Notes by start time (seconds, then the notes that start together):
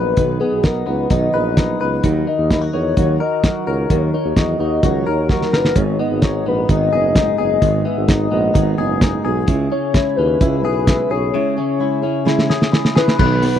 Already playing: A#1 F#3 B3 D#4 B4
0.17 B1 B2 D#3 F#3 B3 D#4 B4, kick, closed hi-hat
0.40 F#3 B3 D#4 G#4 B4
0.52 B1
0.62 F#3 B3 D#4 A#4 B4, kick, snare, closed hi-hat
0.86 C#2 F#3 B3 D#4 B4
1.10 B1 B2 D#3 F#3 B3 D#4 B4 D#5, kick, closed hi-hat
1.33 A#1 F#3 B3 D#4 B4
1.56 F#3 B3 D#4 B4, kick, snare, closed hi-hat
1.80 C#2 F#3 B3 D#4 B4
2.04 D#2 D#3 F#3 D#4 F#4 A#4, kick, closed hi-hat
2.28 D#4 F#4 A#4 D#5
2.38 D#2
2.50 F#3 D#4 E4 F#4 A#4, kick, snare, closed hi-hat
2.62 F#4
2.73 E2 D#4 F#4 A#4 C#5
2.97 D#2 D#3 F#3 D#4 F#4 A#4, kick, closed hi-hat
3.20 D#4 F#4 A#4 D#5
3.43 F#3 D#4 F#4 A#4, kick, snare, closed hi-hat
3.66 C#2 D#4 F#4 A#4 C#5
3.90 D#2 D#3 F#3 D#4 F#4 A#4, kick, closed hi-hat
4.13 D#4 F#4 A#4 C#5
4.25 D#2
4.36 E2 F#3 D#4 F#4 A#4 D#5, kick, snare, closed hi-hat
4.59 D#2 D#4 F#4 A#4 D#5
4.83 C#2 D#3 F#3 D#4 F#4 A#4 C#5, kick, closed hi-hat
5.06 D#2 D#4 F#4 A#4
5.29 F#3 D#4 F#4 A#4, kick, snare
5.42 snare
5.52 F#1 D#4 F#4 A#4 B4, snare
5.65 snare
5.75 G#1 G#2 D#3 G#3 B3 D#4 G#4 C#5, kick, closed hi-hat
5.99 G#3 B3 D#4 G#4 D#5
6.11 G#1
6.22 G#3 B3 D#4 G#4 C#5, kick, snare, closed hi-hat
6.45 A#1 G#3 B3 D#4 G#4 B4
6.69 G#1 G#2 D#3 G#3 B3 D#4 G#4 D#5, kick, closed hi-hat
6.92 F#1 G#3 B3 D#4 G#4
7.15 G#3 B3 D#4 G#4, kick, snare, closed hi-hat
7.38 F#1 G#3 B3 D#4 G#4 D#5
7.61 G#1 G#2 D#3 G#3 B3 D#4 G#4, kick, closed hi-hat
7.85 G#3 B3 D#4 G#4 E5
7.97 G#1
8.08 G#3 B3 D#4 G#4 D#5, kick, snare, closed hi-hat
8.31 A#1 G#3 B3 D#4 G#4
8.54 G#1 G#2 D#3 G#3 B3 D#4 G#4, kick, closed hi-hat
8.78 F#1 G#3 B3 D#4 G#4
9.01 G#3 B3 D#4 G#4, kick, snare, closed hi-hat
9.24 B1 G#3 B3 D#4 G#4
9.47 C#2 C#3 G#3 C#4 E4 G#4, kick, closed hi-hat
9.71 C#4 E4 C#5
9.94 G#3 C#4 E4 G#4, kick, snare, closed hi-hat
10.16 D#2 C#4 E4 G#4 B4
10.40 C#2 C#3 G#3 C#4 E4 G#4, kick, closed hi-hat
10.63 B1 C#4 E4 G#4 B4
10.87 G#3 C#4 E4 G#4, kick, snare, closed hi-hat
11.10 B1 C#4 E4 G#4 C#5
11.31 C#3 G#3 C#4 E4 C#5
11.36 G#4
11.56 C#4 E4 G#4
11.80 G#3 C#4 E4 G#4
12.02 C#4 E4 G#4
12.25 C#3 G#3 C#4 E4 G#4, snare
12.39 snare
12.49 C#4 E4 G#4, snare
12.62 snare
12.72 G#3 C#4 E4 G#4, snare
12.85 snare
12.95 C#4 E4 G#4 B4, snare
13.08 snare
13.19 B1 B2 D#3 F#3 B3 D#4 B4, kick, crash
13.41 F#3 B3 D#4 B4, open hi-hat
13.54 F#1